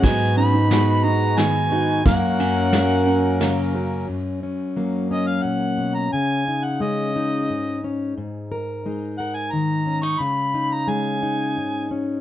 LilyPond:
<<
  \new Staff \with { instrumentName = "Harmonica" } { \time 3/4 \key fis \major \tempo 4 = 88 gis''8 b''4 ais''8 gis''4 | fis''2~ fis''8 r8 | r4. dis''16 eis''16 fis''8. ais''16 | gis''8. fis''16 dis''4. r8 |
r4. fis''16 gis''16 ais''8. cis'''16 | b''8. ais''16 gis''4. r8 | }
  \new Staff \with { instrumentName = "Harmonium" } { \time 3/4 \key fis \major <gis fis' b'>2. | <fis cis' ais'>2. | r2. | r2. |
r2. | r2. | }
  \new Staff \with { instrumentName = "Felt piano" } { \time 3/4 \key fis \major fis8 cis'16 dis'16 b8 dis'8 b8 fis'8 | ais8 cis'8 ais8 cis'8 ais8 fis'8 | r2. | r2. |
r2. | r2. | }
  \new Staff \with { instrumentName = "Steel-string acoustic guitar" } { \time 3/4 \key fis \major << { b8 dis'8 fis'4. dis'8 | ais8 cis'8 ais'4. cis'8~ | cis'8 cis'8 ais8 cis'4.~ | cis'8 dis'8 cis'8 dis'4 cis'8 |
r8 ais'8 dis'8 ais'4 cis'16 dis'16 | r8 dis'8 cis'8 dis'4 cis'8 | } \\ { gis,4 gis4 dis4 | fis,4 fis4 cis4 | fis,4 fis4 ais,8 b,8 | cis4 gis4 gis,4 |
gis,4 gis4 dis4 | cis4 gis4 gis,4 | } >> }
  \new Staff \with { instrumentName = "Upright bass" } { \clef bass \time 3/4 \key fis \major gis,2. | fis,2. | r2. | r2. |
r2. | r2. | }
  \new DrumStaff \with { instrumentName = "Drums" } \drummode { \time 3/4 <bd cymr>4 <cymr sn>4 <cymr sn>4 | <bd cymr>8 cymr8 <cymr sn>4 <cymr sn>4 | r4 r4 r4 | r4 r4 r4 |
r4 r4 r4 | r4 r4 r4 | }
>>